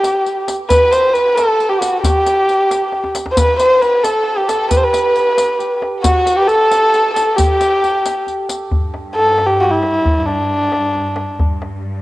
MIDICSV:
0, 0, Header, 1, 7, 480
1, 0, Start_track
1, 0, Tempo, 445434
1, 752, Time_signature, 6, 3, 24, 8
1, 12951, End_track
2, 0, Start_track
2, 0, Title_t, "Kamancheh"
2, 0, Program_c, 0, 110
2, 0, Note_on_c, 0, 67, 83
2, 518, Note_off_c, 0, 67, 0
2, 756, Note_on_c, 0, 71, 105
2, 990, Note_on_c, 0, 72, 102
2, 1006, Note_off_c, 0, 71, 0
2, 1222, Note_on_c, 0, 71, 94
2, 1238, Note_off_c, 0, 72, 0
2, 1460, Note_on_c, 0, 69, 88
2, 1476, Note_off_c, 0, 71, 0
2, 1823, Note_on_c, 0, 67, 79
2, 1839, Note_off_c, 0, 69, 0
2, 1937, Note_on_c, 0, 66, 79
2, 1953, Note_off_c, 0, 67, 0
2, 2176, Note_off_c, 0, 66, 0
2, 2182, Note_on_c, 0, 67, 89
2, 3344, Note_off_c, 0, 67, 0
2, 3571, Note_on_c, 0, 72, 67
2, 3639, Note_on_c, 0, 71, 103
2, 3655, Note_off_c, 0, 72, 0
2, 3864, Note_off_c, 0, 71, 0
2, 3870, Note_on_c, 0, 72, 97
2, 4111, Note_on_c, 0, 71, 95
2, 4127, Note_off_c, 0, 72, 0
2, 4349, Note_on_c, 0, 69, 85
2, 4365, Note_off_c, 0, 71, 0
2, 4714, Note_on_c, 0, 67, 73
2, 4730, Note_off_c, 0, 69, 0
2, 4834, Note_on_c, 0, 69, 80
2, 4850, Note_off_c, 0, 67, 0
2, 5061, Note_off_c, 0, 69, 0
2, 5067, Note_on_c, 0, 71, 81
2, 5138, Note_on_c, 0, 72, 73
2, 5154, Note_off_c, 0, 71, 0
2, 5215, Note_on_c, 0, 71, 88
2, 5231, Note_off_c, 0, 72, 0
2, 6267, Note_off_c, 0, 71, 0
2, 6506, Note_on_c, 0, 66, 87
2, 6858, Note_on_c, 0, 67, 97
2, 6874, Note_off_c, 0, 66, 0
2, 6978, Note_on_c, 0, 69, 112
2, 6994, Note_off_c, 0, 67, 0
2, 7689, Note_off_c, 0, 69, 0
2, 7695, Note_on_c, 0, 69, 83
2, 7936, Note_on_c, 0, 67, 90
2, 7952, Note_off_c, 0, 69, 0
2, 8904, Note_off_c, 0, 67, 0
2, 9865, Note_on_c, 0, 69, 90
2, 10197, Note_on_c, 0, 67, 80
2, 10213, Note_off_c, 0, 69, 0
2, 10349, Note_on_c, 0, 66, 83
2, 10365, Note_off_c, 0, 67, 0
2, 10377, Note_on_c, 0, 67, 71
2, 10393, Note_off_c, 0, 66, 0
2, 10399, Note_on_c, 0, 66, 85
2, 10415, Note_off_c, 0, 67, 0
2, 10458, Note_on_c, 0, 64, 83
2, 10474, Note_off_c, 0, 66, 0
2, 10990, Note_off_c, 0, 64, 0
2, 10990, Note_on_c, 0, 64, 54
2, 11058, Note_on_c, 0, 62, 78
2, 11074, Note_off_c, 0, 64, 0
2, 12236, Note_off_c, 0, 62, 0
2, 12951, End_track
3, 0, Start_track
3, 0, Title_t, "Santur"
3, 0, Program_c, 1, 15
3, 0, Note_on_c, 1, 67, 75
3, 0, Note_on_c, 1, 69, 72
3, 0, Note_on_c, 1, 71, 75
3, 759, Note_off_c, 1, 71, 0
3, 764, Note_on_c, 1, 71, 86
3, 1235, Note_off_c, 1, 71, 0
3, 1240, Note_on_c, 1, 71, 76
3, 1467, Note_off_c, 1, 69, 0
3, 1472, Note_on_c, 1, 69, 78
3, 1831, Note_off_c, 1, 67, 0
3, 1835, Note_on_c, 1, 67, 73
3, 1955, Note_on_c, 1, 66, 72
3, 2019, Note_off_c, 1, 67, 0
3, 2201, Note_on_c, 1, 67, 69
3, 2265, Note_off_c, 1, 66, 0
3, 3624, Note_off_c, 1, 71, 0
3, 3628, Note_on_c, 1, 71, 83
3, 3873, Note_on_c, 1, 72, 76
3, 3938, Note_off_c, 1, 71, 0
3, 4123, Note_on_c, 1, 71, 76
3, 4188, Note_off_c, 1, 72, 0
3, 4350, Note_off_c, 1, 69, 0
3, 4354, Note_on_c, 1, 69, 75
3, 4708, Note_off_c, 1, 67, 0
3, 4712, Note_on_c, 1, 67, 71
3, 4829, Note_off_c, 1, 69, 0
3, 4833, Note_on_c, 1, 69, 66
3, 5062, Note_off_c, 1, 71, 0
3, 5066, Note_on_c, 1, 71, 87
3, 5206, Note_off_c, 1, 71, 0
3, 5211, Note_on_c, 1, 71, 74
3, 6013, Note_off_c, 1, 67, 0
3, 6018, Note_on_c, 1, 67, 54
3, 6501, Note_on_c, 1, 66, 82
3, 6566, Note_off_c, 1, 67, 0
3, 6866, Note_on_c, 1, 67, 74
3, 6930, Note_off_c, 1, 66, 0
3, 6974, Note_off_c, 1, 69, 0
3, 6978, Note_on_c, 1, 69, 86
3, 7688, Note_off_c, 1, 69, 0
3, 7692, Note_on_c, 1, 69, 73
3, 7934, Note_off_c, 1, 67, 0
3, 7938, Note_on_c, 1, 67, 70
3, 8160, Note_off_c, 1, 71, 0
3, 10843, Note_off_c, 1, 69, 0
3, 11320, Note_off_c, 1, 67, 0
3, 12951, End_track
4, 0, Start_track
4, 0, Title_t, "Violin section"
4, 0, Program_c, 2, 48
4, 0, Note_on_c, 2, 67, 73
4, 479, Note_off_c, 2, 67, 0
4, 761, Note_on_c, 2, 71, 91
4, 1203, Note_off_c, 2, 71, 0
4, 1246, Note_on_c, 2, 71, 80
4, 1463, Note_off_c, 2, 71, 0
4, 1480, Note_on_c, 2, 69, 84
4, 1836, Note_off_c, 2, 69, 0
4, 1844, Note_on_c, 2, 67, 66
4, 1958, Note_off_c, 2, 67, 0
4, 1965, Note_on_c, 2, 66, 71
4, 2123, Note_off_c, 2, 66, 0
4, 2128, Note_on_c, 2, 69, 44
4, 2198, Note_off_c, 2, 69, 0
4, 2199, Note_on_c, 2, 67, 72
4, 3395, Note_off_c, 2, 67, 0
4, 3636, Note_on_c, 2, 71, 76
4, 3857, Note_off_c, 2, 71, 0
4, 3864, Note_on_c, 2, 72, 88
4, 4107, Note_off_c, 2, 72, 0
4, 4111, Note_on_c, 2, 71, 76
4, 4336, Note_on_c, 2, 69, 76
4, 4351, Note_off_c, 2, 71, 0
4, 4789, Note_off_c, 2, 69, 0
4, 4825, Note_on_c, 2, 69, 73
4, 5051, Note_off_c, 2, 69, 0
4, 5071, Note_on_c, 2, 71, 71
4, 5213, Note_off_c, 2, 71, 0
4, 5226, Note_on_c, 2, 71, 79
4, 6230, Note_off_c, 2, 71, 0
4, 6505, Note_on_c, 2, 66, 81
4, 6884, Note_off_c, 2, 66, 0
4, 6914, Note_on_c, 2, 71, 68
4, 6981, Note_on_c, 2, 69, 91
4, 6990, Note_off_c, 2, 71, 0
4, 7942, Note_on_c, 2, 67, 69
4, 7946, Note_off_c, 2, 69, 0
4, 8864, Note_off_c, 2, 67, 0
4, 12951, End_track
5, 0, Start_track
5, 0, Title_t, "Cello section"
5, 0, Program_c, 3, 48
5, 9386, Note_on_c, 3, 43, 67
5, 12253, Note_off_c, 3, 43, 0
5, 12266, Note_on_c, 3, 43, 68
5, 12951, Note_off_c, 3, 43, 0
5, 12951, End_track
6, 0, Start_track
6, 0, Title_t, "Riq"
6, 44, Note_on_c, 9, 54, 44
6, 152, Note_off_c, 9, 54, 0
6, 283, Note_on_c, 9, 54, 21
6, 391, Note_off_c, 9, 54, 0
6, 519, Note_on_c, 9, 54, 44
6, 627, Note_off_c, 9, 54, 0
6, 756, Note_on_c, 9, 54, 57
6, 864, Note_off_c, 9, 54, 0
6, 997, Note_on_c, 9, 54, 40
6, 1105, Note_off_c, 9, 54, 0
6, 1240, Note_on_c, 9, 54, 20
6, 1348, Note_off_c, 9, 54, 0
6, 1480, Note_on_c, 9, 54, 45
6, 1588, Note_off_c, 9, 54, 0
6, 1727, Note_on_c, 9, 54, 18
6, 1834, Note_off_c, 9, 54, 0
6, 1962, Note_on_c, 9, 54, 49
6, 2069, Note_off_c, 9, 54, 0
6, 2203, Note_on_c, 9, 54, 60
6, 2311, Note_off_c, 9, 54, 0
6, 2440, Note_on_c, 9, 54, 44
6, 2547, Note_off_c, 9, 54, 0
6, 2681, Note_on_c, 9, 54, 19
6, 2789, Note_off_c, 9, 54, 0
6, 2922, Note_on_c, 9, 54, 47
6, 3030, Note_off_c, 9, 54, 0
6, 3392, Note_on_c, 9, 54, 46
6, 3500, Note_off_c, 9, 54, 0
6, 3632, Note_on_c, 9, 54, 64
6, 3740, Note_off_c, 9, 54, 0
6, 3874, Note_on_c, 9, 54, 41
6, 3981, Note_off_c, 9, 54, 0
6, 4118, Note_on_c, 9, 54, 17
6, 4226, Note_off_c, 9, 54, 0
6, 4358, Note_on_c, 9, 54, 46
6, 4465, Note_off_c, 9, 54, 0
6, 4838, Note_on_c, 9, 54, 45
6, 4946, Note_off_c, 9, 54, 0
6, 5074, Note_on_c, 9, 54, 57
6, 5181, Note_off_c, 9, 54, 0
6, 5321, Note_on_c, 9, 54, 40
6, 5429, Note_off_c, 9, 54, 0
6, 5556, Note_on_c, 9, 54, 19
6, 5663, Note_off_c, 9, 54, 0
6, 5798, Note_on_c, 9, 54, 48
6, 5906, Note_off_c, 9, 54, 0
6, 6038, Note_on_c, 9, 54, 18
6, 6146, Note_off_c, 9, 54, 0
6, 6511, Note_on_c, 9, 54, 67
6, 6619, Note_off_c, 9, 54, 0
6, 6755, Note_on_c, 9, 54, 42
6, 6862, Note_off_c, 9, 54, 0
6, 6992, Note_on_c, 9, 54, 18
6, 7100, Note_off_c, 9, 54, 0
6, 7235, Note_on_c, 9, 54, 41
6, 7343, Note_off_c, 9, 54, 0
6, 7477, Note_on_c, 9, 54, 19
6, 7585, Note_off_c, 9, 54, 0
6, 7718, Note_on_c, 9, 54, 44
6, 7826, Note_off_c, 9, 54, 0
6, 7954, Note_on_c, 9, 54, 58
6, 8061, Note_off_c, 9, 54, 0
6, 8197, Note_on_c, 9, 54, 42
6, 8305, Note_off_c, 9, 54, 0
6, 8447, Note_on_c, 9, 54, 17
6, 8554, Note_off_c, 9, 54, 0
6, 8681, Note_on_c, 9, 54, 46
6, 8789, Note_off_c, 9, 54, 0
6, 8923, Note_on_c, 9, 54, 16
6, 9031, Note_off_c, 9, 54, 0
6, 9153, Note_on_c, 9, 54, 47
6, 9261, Note_off_c, 9, 54, 0
6, 12951, End_track
7, 0, Start_track
7, 0, Title_t, "Tombak"
7, 38, Note_on_c, 9, 63, 69
7, 146, Note_off_c, 9, 63, 0
7, 516, Note_on_c, 9, 63, 66
7, 624, Note_off_c, 9, 63, 0
7, 757, Note_on_c, 9, 64, 84
7, 865, Note_off_c, 9, 64, 0
7, 999, Note_on_c, 9, 63, 60
7, 1107, Note_off_c, 9, 63, 0
7, 1243, Note_on_c, 9, 62, 25
7, 1351, Note_off_c, 9, 62, 0
7, 1483, Note_on_c, 9, 63, 66
7, 1591, Note_off_c, 9, 63, 0
7, 1955, Note_on_c, 9, 63, 62
7, 2062, Note_off_c, 9, 63, 0
7, 2195, Note_on_c, 9, 64, 84
7, 2303, Note_off_c, 9, 64, 0
7, 2440, Note_on_c, 9, 63, 61
7, 2547, Note_off_c, 9, 63, 0
7, 2678, Note_on_c, 9, 62, 23
7, 2786, Note_off_c, 9, 62, 0
7, 2918, Note_on_c, 9, 63, 59
7, 3026, Note_off_c, 9, 63, 0
7, 3149, Note_on_c, 9, 63, 48
7, 3257, Note_off_c, 9, 63, 0
7, 3273, Note_on_c, 9, 62, 62
7, 3380, Note_off_c, 9, 62, 0
7, 3399, Note_on_c, 9, 63, 74
7, 3507, Note_off_c, 9, 63, 0
7, 3510, Note_on_c, 9, 62, 83
7, 3618, Note_off_c, 9, 62, 0
7, 3631, Note_on_c, 9, 64, 86
7, 3738, Note_off_c, 9, 64, 0
7, 3875, Note_on_c, 9, 63, 60
7, 3982, Note_off_c, 9, 63, 0
7, 4118, Note_on_c, 9, 62, 22
7, 4226, Note_off_c, 9, 62, 0
7, 4354, Note_on_c, 9, 63, 66
7, 4462, Note_off_c, 9, 63, 0
7, 4839, Note_on_c, 9, 63, 69
7, 4947, Note_off_c, 9, 63, 0
7, 5075, Note_on_c, 9, 64, 74
7, 5182, Note_off_c, 9, 64, 0
7, 5313, Note_on_c, 9, 63, 61
7, 5421, Note_off_c, 9, 63, 0
7, 5558, Note_on_c, 9, 62, 21
7, 5665, Note_off_c, 9, 62, 0
7, 5793, Note_on_c, 9, 63, 70
7, 5901, Note_off_c, 9, 63, 0
7, 6273, Note_on_c, 9, 63, 65
7, 6380, Note_off_c, 9, 63, 0
7, 6511, Note_on_c, 9, 64, 88
7, 6618, Note_off_c, 9, 64, 0
7, 6745, Note_on_c, 9, 63, 62
7, 6853, Note_off_c, 9, 63, 0
7, 6990, Note_on_c, 9, 62, 25
7, 7098, Note_off_c, 9, 62, 0
7, 7234, Note_on_c, 9, 63, 62
7, 7342, Note_off_c, 9, 63, 0
7, 7719, Note_on_c, 9, 63, 61
7, 7827, Note_off_c, 9, 63, 0
7, 7963, Note_on_c, 9, 64, 82
7, 8071, Note_off_c, 9, 64, 0
7, 8197, Note_on_c, 9, 63, 56
7, 8305, Note_off_c, 9, 63, 0
7, 8439, Note_on_c, 9, 62, 28
7, 8547, Note_off_c, 9, 62, 0
7, 8682, Note_on_c, 9, 63, 66
7, 8790, Note_off_c, 9, 63, 0
7, 8911, Note_on_c, 9, 62, 29
7, 9019, Note_off_c, 9, 62, 0
7, 9150, Note_on_c, 9, 63, 60
7, 9258, Note_off_c, 9, 63, 0
7, 9391, Note_on_c, 9, 64, 72
7, 9499, Note_off_c, 9, 64, 0
7, 9631, Note_on_c, 9, 63, 58
7, 9739, Note_off_c, 9, 63, 0
7, 10109, Note_on_c, 9, 63, 63
7, 10217, Note_off_c, 9, 63, 0
7, 10348, Note_on_c, 9, 62, 24
7, 10455, Note_off_c, 9, 62, 0
7, 10589, Note_on_c, 9, 63, 61
7, 10697, Note_off_c, 9, 63, 0
7, 10835, Note_on_c, 9, 64, 69
7, 10943, Note_off_c, 9, 64, 0
7, 11078, Note_on_c, 9, 63, 55
7, 11186, Note_off_c, 9, 63, 0
7, 11553, Note_on_c, 9, 63, 69
7, 11661, Note_off_c, 9, 63, 0
7, 11800, Note_on_c, 9, 62, 25
7, 11908, Note_off_c, 9, 62, 0
7, 12025, Note_on_c, 9, 63, 67
7, 12133, Note_off_c, 9, 63, 0
7, 12278, Note_on_c, 9, 64, 73
7, 12386, Note_off_c, 9, 64, 0
7, 12519, Note_on_c, 9, 63, 61
7, 12626, Note_off_c, 9, 63, 0
7, 12951, End_track
0, 0, End_of_file